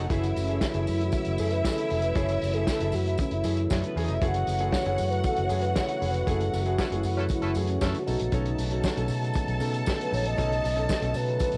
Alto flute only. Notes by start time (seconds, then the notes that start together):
0.40 C#4
0.66 E4
1.04 F#4
1.40 A4
1.53 B4
1.65 A4
2.03 B4
2.16 C#5
2.54 A4
2.69 A4
2.95 F#4
3.21 C#4
3.34 E4
4.76 C#5
5.11 B4
5.26 A4
5.45 C#5
5.62 B4
5.79 C#5
6.12 B4
6.30 A4
6.62 F#4
6.96 E4
7.31 E4
7.65 C#4
7.99 F#4
8.34 D#4
8.69 F#4
9.88 A4
10.02 B4
10.14 C#5
10.27 D#5
11.16 B4